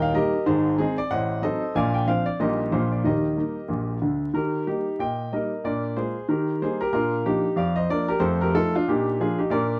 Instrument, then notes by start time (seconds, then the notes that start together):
grand piano
Already playing: D#1 D#2 A#4 D#5 G5
0.02 F5
0.14 D#3 G3 A#3 G4 A#4 D#5
0.46 G#1 G#2 D#4 G#4 C5
0.78 D#3 G#3 C4 D#4 G#4
0.98 D5
1.11 A1 A2 C5 D#5 F#5
1.42 F#3 C4 D#4 A4 C5 D#5
1.75 A#1 A#2 D5 F5 G#5
1.94 G5
2.07 F3 C4 D4 C5 D5 F5
2.26 D5
2.40 A#1 A#2 G3 A#3 D#4 G4 A#4 D#5
2.72 A#1 A#2 F3 A#3 F4 C5
2.92 D5
3.04 D#2 D#3 G4 A#4 D#5
3.36 G3 A#3 D#4
3.68 A#1 A#2
4.02 D2 D3
4.34 D#3 G4 A#4
4.66 G3 A#3 D#4 G4
4.99 A#2 D#5 G5
5.32 G3 A#3 D#4 A#4 D#5
5.64 A#2 D4 A#4 D5
5.96 G#3 A#3 F4 G#4 C5
6.28 D#3 G4 A#4
6.61 G3 A#3 D#4 G#4 C5
6.81 G4 A#4
6.93 A#2 D4 F4 A#4
7.26 F3 A#3 D4 D#4 G4
7.56 F2 D5 F5
7.76 C5 D#5
7.89 F3 A#3 D4 A#4 D5
8.08 G4 A#4
8.20 F2 A3 A4 C5
8.41 G4 A#4
8.54 F3 A3 D#4 F4 A4
8.75 D4 F4
8.88 A#2 D4 D#4 G4
9.20 F3 A#3 D4 F4 G#4
9.39 D#4 G4
9.50 A#2 D4 A#4 D5